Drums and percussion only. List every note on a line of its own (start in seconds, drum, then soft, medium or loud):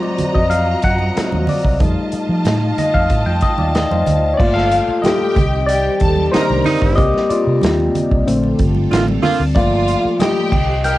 0.03 muted conga soft
0.18 closed hi-hat medium
0.18 low conga medium
0.35 kick medium
0.51 closed hi-hat medium
0.82 kick medium
0.82 closed hi-hat medium
0.99 high conga medium
1.17 snare loud
1.17 closed hi-hat medium
1.32 muted conga soft
1.32 high conga medium
1.47 open hi-hat medium
1.47 low conga medium
1.65 kick medium
1.80 kick loud
1.80 closed hi-hat medium
1.80 low conga medium
2.12 closed hi-hat medium
2.45 snare loud
2.45 closed hi-hat medium
2.45 muted conga soft
2.45 high conga medium
2.78 closed hi-hat medium
2.78 low conga medium
2.94 kick medium
3.10 kick medium
3.10 closed hi-hat medium
3.27 muted conga soft
3.41 kick medium
3.41 closed hi-hat medium
3.58 high conga medium
3.74 snare loud
3.74 closed hi-hat medium
3.74 muted conga soft
3.91 muted conga soft
3.91 high conga medium
4.06 closed hi-hat medium
4.06 low conga medium
4.40 kick loud
4.40 crash loud
4.56 snare soft
4.56 muted conga soft
4.71 closed hi-hat medium
5.04 snare loud
5.04 closed hi-hat medium
5.04 muted conga soft
5.04 high conga medium
5.36 kick loud
5.36 closed hi-hat medium
5.36 low conga medium
5.69 closed hi-hat medium
6.00 kick medium
6.00 closed hi-hat medium
6.16 high conga medium
6.34 snare loud
6.34 closed hi-hat loud
6.50 muted conga soft
6.50 high conga medium
6.64 open hi-hat medium
6.64 low conga medium
6.82 kick medium
6.98 kick loud
6.98 closed hi-hat medium
6.98 muted conga soft
7.14 snare soft
7.14 muted conga soft
7.30 closed hi-hat medium
7.62 snare loud
7.62 closed hi-hat medium
7.62 muted conga soft
7.62 high conga medium
7.80 muted conga soft
7.95 closed hi-hat medium
7.95 low conga medium
8.11 kick medium
8.28 closed hi-hat loud
8.43 muted conga soft
8.59 kick medium
8.59 closed hi-hat medium
8.75 high conga medium
8.91 snare loud
8.91 closed hi-hat loud
8.91 muted conga soft
9.08 muted conga soft
9.08 high conga medium
9.23 open hi-hat medium
9.23 low conga medium
9.56 kick loud
9.56 closed hi-hat medium
9.88 closed hi-hat medium
10.20 snare loud
10.20 closed hi-hat loud
10.20 muted conga soft
10.20 high conga medium
10.37 muted conga soft
10.52 kick loud
10.52 crash medium
10.52 low conga medium
10.84 closed hi-hat medium
10.84 muted conga soft